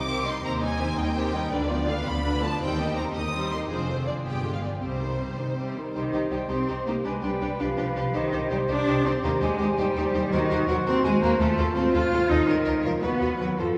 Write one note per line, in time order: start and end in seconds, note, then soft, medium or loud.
0.00 0.37 C2 medium
0.00 0.37 C3 medium
0.00 0.26 D6 medium
0.07 0.25 D#3 medium
0.07 0.25 C4 soft
0.07 0.24 G4 soft
0.07 0.25 C5 soft
0.26 0.44 G3 soft
0.26 0.44 D#4 medium
0.26 0.44 D#4 soft
0.26 0.44 D#5 soft
0.26 0.45 C6 medium
0.44 0.92 D#2 medium
0.44 0.61 D#3 medium
0.44 0.61 C4 medium
0.44 0.61 G4 medium
0.44 0.61 C5 soft
0.44 0.51 A#5 medium
0.62 0.80 G3 soft
0.62 0.80 D#4 soft
0.62 0.81 D#4 soft
0.62 0.81 D#5 soft
0.62 0.98 G#5 medium
0.79 0.98 D#3 soft
0.79 0.98 C4 soft
0.79 0.98 G4 soft
0.79 0.98 C5 medium
0.97 1.46 D#2 medium
0.97 1.17 G3 medium
0.97 1.16 D#4 medium
0.97 1.17 D#4 soft
0.97 1.16 D#5 medium
0.97 1.52 G5 medium
1.15 1.33 D#3 medium
1.15 1.33 C4 medium
1.15 1.32 G4 medium
1.15 1.32 C5 soft
1.33 1.52 G3 medium
1.33 1.52 D#4 soft
1.33 1.52 D#4 medium
1.33 1.52 D#5 medium
1.52 2.00 D2 medium
1.52 1.69 D3 medium
1.52 1.69 D4 medium
1.52 1.69 B4 medium
1.52 1.89 D5 medium
1.69 1.89 F3 medium
1.69 1.89 B3 medium
1.69 1.88 F4 soft
1.69 1.88 D5 medium
1.88 2.07 D3 soft
1.88 2.06 D4 soft
1.88 2.07 D4 medium
1.88 2.06 B4 medium
1.88 2.06 F5 medium
2.06 2.55 D2 medium
2.06 2.25 F3 soft
2.06 2.25 B3 medium
2.06 2.25 F4 medium
2.06 2.25 D5 medium
2.06 2.43 B5 medium
2.24 2.42 D3 medium
2.24 2.42 D4 soft
2.24 2.42 D4 medium
2.24 2.42 B4 soft
2.42 2.62 F3 soft
2.42 2.61 B3 soft
2.42 2.61 F4 medium
2.42 2.61 D5 soft
2.42 2.61 A5 medium
2.60 3.09 D#2 medium
2.60 2.79 G3 medium
2.60 2.78 C4 medium
2.60 2.77 D#4 medium
2.60 2.77 C5 soft
2.60 2.97 G5 medium
2.79 2.98 D#3 soft
2.79 2.98 D#4 soft
2.79 2.97 G4 soft
2.79 2.97 D#5 soft
2.96 3.16 G3 soft
2.96 3.16 C4 soft
2.96 3.15 D#4 soft
2.96 3.15 C5 soft
2.96 3.03 A#5 medium
3.14 3.64 D#2 medium
3.14 3.34 D#3 medium
3.14 3.34 D#4 medium
3.14 3.33 G4 medium
3.14 3.33 D#5 soft
3.14 3.51 D#6 medium
3.34 3.52 G3 medium
3.34 3.52 C4 soft
3.34 3.51 D#4 soft
3.34 3.51 C5 soft
3.51 3.71 D#3 soft
3.51 3.71 D#4 soft
3.51 3.70 G4 soft
3.51 3.70 D#5 soft
3.51 3.59 C6 medium
3.69 4.19 F1 medium
3.69 4.19 F2 medium
3.69 3.88 F3 soft
3.69 3.87 C4 soft
3.69 3.88 D4 soft
3.69 3.87 G#4 soft
3.69 4.06 C5 medium
3.88 4.08 D3 soft
3.88 4.08 C4 soft
3.88 4.07 F4 soft
3.88 4.07 C5 soft
4.06 4.26 F3 soft
4.06 4.25 C4 soft
4.06 4.26 D4 soft
4.06 4.24 G#4 soft
4.06 4.14 D5 medium
4.25 4.75 G1 soft
4.25 4.75 G2 medium
4.25 4.44 F3 soft
4.25 4.44 B3 soft
4.25 4.42 G4 soft
4.25 4.43 G#4 soft
4.25 4.53 G5 medium
4.43 4.64 D3 soft
4.43 4.63 G#3 soft
4.43 4.63 F4 soft
4.43 4.62 G4 soft
4.54 4.58 F5 soft
4.63 4.83 F3 soft
4.63 4.83 B3 soft
4.63 4.79 G4 soft
4.63 4.82 G#4 soft
4.63 4.70 D5 soft
4.80 5.32 C2 soft
4.80 5.32 C3 soft
4.80 5.00 G3 soft
4.80 4.99 C4 soft
4.80 5.00 C4 soft
4.80 4.99 G4 soft
4.80 5.74 C5 medium
4.99 5.20 D#3 soft
4.99 5.19 G3 soft
4.99 5.19 D#4 soft
4.99 5.19 C5 soft
5.19 5.37 G3 soft
5.19 5.38 C4 soft
5.19 5.39 C4 soft
5.19 5.38 G4 soft
5.38 5.88 C2 soft
5.38 5.89 C3 soft
5.38 5.58 D#3 soft
5.38 5.57 G3 soft
5.38 5.58 D#4 soft
5.38 5.58 C5 soft
5.57 5.76 G3 soft
5.57 5.75 C4 soft
5.57 5.76 C4 soft
5.57 5.75 G4 soft
5.76 5.96 D#3 soft
5.76 5.96 G3 soft
5.76 5.95 D#4 soft
5.76 5.95 C5 soft
5.95 6.02 C2 medium
5.95 6.29 D#3 medium
5.95 6.03 D#4 medium
5.95 6.03 G4 soft
5.95 8.12 G4 soft
5.95 6.02 C5 medium
5.95 7.01 C5 soft
5.95 7.02 C5 soft
5.95 6.33 D#5 medium
6.13 6.20 C2 soft
6.13 6.21 D#4 soft
6.13 6.21 G4 soft
6.13 6.20 C5 soft
6.31 6.39 C2 soft
6.31 6.50 G3 medium
6.31 6.39 D#4 soft
6.31 6.39 G4 soft
6.31 6.38 C5 soft
6.31 6.51 G5 medium
6.49 6.57 C2 soft
6.49 6.86 C4 medium
6.49 6.58 D#4 soft
6.49 6.57 G4 medium
6.49 6.57 C5 soft
6.49 6.86 C6 medium
6.68 6.76 C2 medium
6.68 6.76 D#4 soft
6.68 6.76 G4 soft
6.68 6.75 C5 soft
6.86 6.94 C2 soft
6.86 6.94 A#3 medium
6.86 6.95 D#4 soft
6.86 6.94 G4 soft
6.86 6.94 C5 soft
6.86 6.93 A#5 medium
7.04 7.12 C2 medium
7.04 7.24 G#3 medium
7.04 7.12 D4 soft
7.04 7.12 G4 medium
7.04 7.12 B4 medium
7.04 8.18 B4 medium
7.04 8.16 B4 medium
7.04 7.25 G#5 medium
7.22 7.31 C2 soft
7.22 7.60 G3 medium
7.22 7.30 D4 soft
7.22 7.30 G4 soft
7.22 7.31 B4 soft
7.22 7.62 G5 medium
7.41 7.49 C2 medium
7.41 7.49 D4 soft
7.41 7.49 G4 soft
7.41 7.49 B4 soft
7.59 7.68 C2 medium
7.59 8.15 F3 medium
7.59 7.67 D4 medium
7.59 7.67 G4 medium
7.59 7.67 B4 medium
7.59 8.17 F5 medium
7.77 7.86 C2 medium
7.77 7.84 D4 medium
7.77 7.85 G4 soft
7.77 7.85 B4 soft
7.95 8.04 C2 medium
7.95 8.03 D4 soft
7.95 8.04 G4 medium
7.95 8.04 B4 soft
8.14 8.22 C2 medium
8.14 8.51 D#3 medium
8.14 8.22 D#4 medium
8.14 8.22 G4 medium
8.14 10.28 G4 medium
8.14 8.22 C5 medium
8.14 10.29 C5 medium
8.14 10.32 C5 medium
8.14 8.51 D#5 medium
8.32 8.40 C2 medium
8.32 8.40 D#4 medium
8.32 8.39 G4 soft
8.32 8.40 C5 medium
8.50 8.58 C2 medium
8.50 8.59 G3 medium
8.50 8.58 D#4 medium
8.50 8.57 G4 medium
8.50 8.58 C5 medium
8.50 8.57 G5 medium
8.68 8.76 C2 medium
8.68 9.05 D4 loud
8.68 8.77 D#4 medium
8.68 8.76 G4 medium
8.68 8.75 C5 medium
8.68 9.08 D6 medium
8.86 8.94 C2 medium
8.86 8.95 D#4 medium
8.86 8.95 G4 medium
8.86 8.94 C5 medium
9.05 9.12 C2 medium
9.05 9.24 C4 medium
9.05 9.13 D#4 soft
9.05 9.13 G4 medium
9.05 9.13 C5 medium
9.05 9.23 C6 medium
9.23 9.31 D#2 medium
9.23 9.32 A#3 medium
9.23 9.31 D#4 medium
9.23 9.31 G4 medium
9.23 9.31 C5 medium
9.23 9.41 A#5 medium
9.41 9.49 D#2 medium
9.41 9.78 G#3 medium
9.41 9.50 D#4 medium
9.41 9.49 G4 medium
9.41 9.48 C5 medium
9.41 9.80 G#5 medium
9.58 9.67 D#2 medium
9.58 9.68 D#4 medium
9.58 9.66 G4 medium
9.58 9.67 C5 medium
9.78 9.85 D#2 medium
9.78 10.31 G3 loud
9.78 9.87 D#4 medium
9.78 9.85 G4 medium
9.78 9.85 C5 medium
9.78 10.08 G5 medium
9.96 10.03 D#2 medium
9.96 10.04 D#4 medium
9.96 10.04 G4 medium
9.96 10.03 C5 medium
10.13 10.21 D#2 medium
10.13 10.22 D#4 medium
10.13 10.22 G4 medium
10.13 10.22 C5 medium
10.32 10.39 D#2 medium
10.32 10.68 D#3 medium
10.32 11.41 F#4 medium
10.32 10.41 F#4 medium
10.32 11.41 F#4 medium
10.32 10.39 A#4 medium
10.32 10.40 C5 medium
10.32 12.49 C5 medium
10.32 12.46 C5 medium
10.32 10.70 D#5 medium
10.50 10.57 D#2 medium
10.50 10.59 F#4 medium
10.50 10.57 A#4 medium
10.50 10.58 C5 medium
10.68 10.75 D#2 medium
10.68 10.76 F#3 medium
10.68 10.76 F#4 medium
10.68 10.75 A#4 medium
10.68 10.76 C5 medium
10.68 10.89 F#5 medium
10.86 10.93 D#2 medium
10.86 11.04 C4 loud
10.86 10.94 F#4 medium
10.86 10.94 A#4 medium
10.86 10.93 C5 medium
10.86 11.06 C6 medium
11.04 11.12 D#2 medium
11.04 11.22 G#3 loud
11.04 11.12 F#4 medium
11.04 11.12 A#4 medium
11.04 11.12 C5 medium
11.04 11.24 G#5 medium
11.22 11.29 D#2 medium
11.22 11.40 A#3 loud
11.22 11.30 F#4 medium
11.22 11.30 A#4 medium
11.22 11.30 C5 medium
11.22 11.41 A#5 medium
11.39 11.47 D#2 medium
11.39 11.76 A3 medium
11.39 12.75 F4 medium
11.39 11.48 F4 medium
11.39 12.47 F4 medium
11.39 11.48 A4 medium
11.39 11.47 C5 medium
11.39 11.77 A5 medium
11.57 11.65 D#2 medium
11.57 11.66 F4 medium
11.57 11.66 A4 medium
11.57 11.64 C5 medium
11.75 11.83 D#2 medium
11.75 11.94 C4 medium
11.75 11.84 F4 medium
11.75 11.84 A4 medium
11.75 11.82 C5 medium
11.75 11.93 C6 medium
11.93 12.01 D#2 medium
11.93 12.30 F4 loud
11.93 12.02 F4 medium
11.93 12.02 A4 medium
11.93 12.00 C5 medium
11.93 12.31 F6 medium
12.11 12.19 D#2 medium
12.11 12.19 F4 medium
12.11 12.21 A4 medium
12.11 12.18 C5 medium
12.29 12.37 D#2 medium
12.29 12.48 D#4 loud
12.29 12.37 F4 medium
12.29 12.38 A4 medium
12.29 12.37 C5 medium
12.29 12.49 D#6 medium
12.46 12.56 C#2 medium
12.46 12.85 D#3 medium
12.46 12.55 F4 medium
12.46 12.99 F4 medium
12.46 12.84 A#4 medium
12.46 12.99 A#4 medium
12.46 12.56 A#4 medium
12.46 12.54 C#5 medium
12.46 12.84 D#5 medium
12.64 12.73 C#2 medium
12.64 12.73 F4 medium
12.64 12.74 A#4 medium
12.64 12.72 C#5 medium
12.82 12.92 C#2 medium
12.82 13.03 F3 medium
12.82 12.92 F4 medium
12.82 12.92 A#4 medium
12.82 12.90 C#5 medium
12.82 13.05 F5 medium
13.01 13.10 D#2 medium
13.01 13.40 B3 medium
13.01 13.59 F#4 medium
13.01 13.60 F#4 medium
13.01 13.10 F#4 medium
13.01 13.09 B4 medium
13.01 13.59 B4 medium
13.01 13.11 B4 medium
13.01 13.61 B4 medium
13.01 13.43 B5 medium
13.18 13.29 D#2 medium
13.18 13.29 F#4 medium
13.18 13.26 B4 soft
13.18 13.29 B4 soft
13.37 13.48 D#2 medium
13.37 13.58 F#3 medium
13.37 13.48 F#4 soft
13.37 13.45 B4 soft
13.37 13.48 B4 medium
13.41 13.59 F#5 medium
13.56 13.66 F2 medium
13.56 13.78 F3 medium
13.56 13.78 F4 medium
13.56 13.78 F4 soft
13.56 13.67 F4 soft
13.56 13.78 A4 medium
13.56 13.78 A4 soft
13.56 13.67 A4 soft
13.56 13.64 C5 medium
13.56 13.78 F5 medium